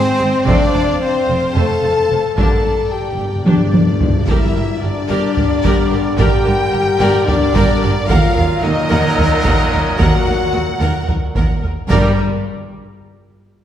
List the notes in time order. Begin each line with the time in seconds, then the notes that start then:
Already playing: C4 C5 D#5
0.18 G#1 G#2 C4 G#4
0.45 F1 F2 C3 A3 C4 D4 C5 D5 F5, taiko
0.73 F1 F2 A3 C5, taiko rim
1.00 C4 C5
1.27 F1 F2 A3 C5
1.55 F1 F2 A3 A4 C5 A5
1.83 F1 F2 A3 C5
2.09 F1 F2 A3 C5
2.36 G1 G2 D3 A#3 D4 G4 A4 A#4 D5 A5, taiko
2.53 G2
2.60 G2
2.64 G1 G2 D4 G4
2.75 G2
2.83 G2
2.90 G2 G4 G5
2.97 G2
3.05 G2
3.12 G2
3.19 G1 G2 D4 G4
3.28 G2
3.35 G2
3.42 G2 D4 D5
3.46 G1 G2 D4 G4, taiko high
3.57 G2
3.64 G2
3.72 G1 G2 D4 G4, taiko high
3.79 G2
3.87 G2
3.95 G2
4.00 G1 G2 D4 G4, taiko low
4.10 G2
4.17 G2
4.26 G1 G2 D3 G3 E4 G4 A#4 D5 E5, taiko
4.54 G1 G2 D4 G4 A#4
4.80 G1 G2 D4 G4 A#4 D5
5.08 G1 G2 G4 A#4 D5
5.36 G1 G2 D4 G4 A#4, taiko low
5.63 G1 G2 G4 A#4 D5, taiko
5.90 G1 G2 D4 G4 A#4
6.17 G1 G2 G4 A#4 D5 G5, taiko
6.45 G1 G2 D4 G4 A#4, taiko rim
6.72 G1 G2 G4 A#4
6.99 G1 G2 G4 A#4 D5
7.26 G1 G2 D4 G4 A#4 D5, taiko low
7.53 G1 G2 G4 A#4 D5, taiko
7.81 G1 G2 D4 G4 A#4
8.07 D#2 A#2 F#3 F4 A#4 F5 F#5, taiko
8.35 D#2 D#4 A#4
8.62 D#2 D#4 F#4 A#4 D#5
8.89 D#2 A#4 F#5
9.16 D#2 D#4 A#4, taiko low
9.43 D#2 A#4 F#5, taiko
9.71 D#2 D#4 A#4
9.97 D#2 F#4 A#4 F#5, taiko
10.26 D#2 D#4 A#4
10.53 D#2 F#4 A#4 D#5
10.79 D#2 A#4 F#5
11.07 D#2 D#4 A#4, taiko low
11.35 D#2 A#4 F#5, taiko
11.62 D#2 D#4 A#4
11.88 G1 G2 G3 A#4 D5 G5 A#5, taiko